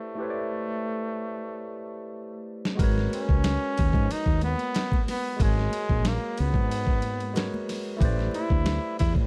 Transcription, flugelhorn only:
0, 0, Header, 1, 2, 480
1, 0, Start_track
1, 0, Tempo, 652174
1, 134, Time_signature, 4, 2, 24, 8
1, 6821, End_track
2, 0, Start_track
2, 0, Title_t, "Flugelhorn"
2, 0, Program_c, 0, 56
2, 0, Note_on_c, 0, 57, 91
2, 1825, Note_off_c, 0, 57, 0
2, 2311, Note_on_c, 0, 61, 104
2, 3032, Note_on_c, 0, 63, 108
2, 3043, Note_off_c, 0, 61, 0
2, 3263, Note_off_c, 0, 63, 0
2, 3269, Note_on_c, 0, 59, 110
2, 3712, Note_off_c, 0, 59, 0
2, 3749, Note_on_c, 0, 59, 101
2, 3989, Note_on_c, 0, 56, 111
2, 4000, Note_off_c, 0, 59, 0
2, 4475, Note_on_c, 0, 58, 98
2, 4486, Note_off_c, 0, 56, 0
2, 4709, Note_on_c, 0, 59, 107
2, 4720, Note_off_c, 0, 58, 0
2, 5661, Note_off_c, 0, 59, 0
2, 6147, Note_on_c, 0, 64, 107
2, 6591, Note_off_c, 0, 64, 0
2, 6619, Note_on_c, 0, 64, 110
2, 6726, Note_off_c, 0, 64, 0
2, 6821, End_track
0, 0, End_of_file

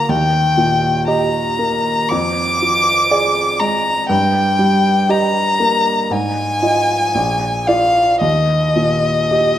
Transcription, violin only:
0, 0, Header, 1, 2, 480
1, 0, Start_track
1, 0, Key_signature, -3, "major"
1, 0, Tempo, 1001669
1, 45, Time_signature, 4, 2, 24, 8
1, 2927, Tempo, 1050788
1, 3887, Tempo, 1094891
1, 4490, End_track
2, 0, Start_track
2, 0, Title_t, "Violin"
2, 0, Program_c, 0, 40
2, 0, Note_on_c, 0, 82, 78
2, 44, Note_on_c, 0, 79, 77
2, 51, Note_off_c, 0, 82, 0
2, 514, Note_off_c, 0, 79, 0
2, 517, Note_on_c, 0, 82, 72
2, 1001, Note_on_c, 0, 86, 93
2, 1008, Note_off_c, 0, 82, 0
2, 1723, Note_on_c, 0, 82, 80
2, 1730, Note_off_c, 0, 86, 0
2, 1956, Note_off_c, 0, 82, 0
2, 1959, Note_on_c, 0, 79, 78
2, 2443, Note_on_c, 0, 82, 80
2, 2450, Note_off_c, 0, 79, 0
2, 2931, Note_on_c, 0, 80, 82
2, 2938, Note_off_c, 0, 82, 0
2, 3641, Note_on_c, 0, 77, 76
2, 3648, Note_off_c, 0, 80, 0
2, 3886, Note_off_c, 0, 77, 0
2, 3889, Note_on_c, 0, 75, 75
2, 4490, Note_off_c, 0, 75, 0
2, 4490, End_track
0, 0, End_of_file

